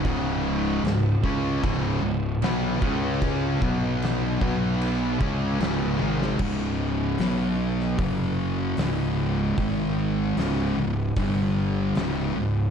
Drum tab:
CC |x---x---x---x---|x---x---x---x---|x---------------|----------------|
HH |----------------|----------------|----o---o---o---|o---o---o---o---|
SD |----o-------o---|----o-------o--o|----o--o----o---|----o-------o---|
T1 |----------------|--------------o-|----------------|----------------|
BD |o-----o-o-----o-|o-o---o---o-----|o-------o-------|o-------o-------|